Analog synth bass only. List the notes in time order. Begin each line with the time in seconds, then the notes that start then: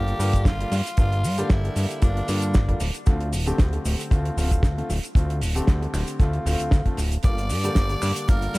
Already playing: G1
0.19 G2
0.45 G1
0.72 G2
0.98 G1
1.24 G2
1.50 G1
1.76 G2
2.02 G1
2.29 G2
2.55 G1
2.81 D1
3.07 D2
3.33 D1
3.59 D2
3.86 D1
4.11 D2
4.37 D1
4.63 D2
4.90 D1
5.15 D2
5.41 D1
5.68 D2
5.94 D1
6.20 D2
6.46 D1
6.60 D2
6.72 D2
6.98 D1
7.24 G1
7.50 G2
7.76 G1
8.02 G2
8.29 G1
8.55 G2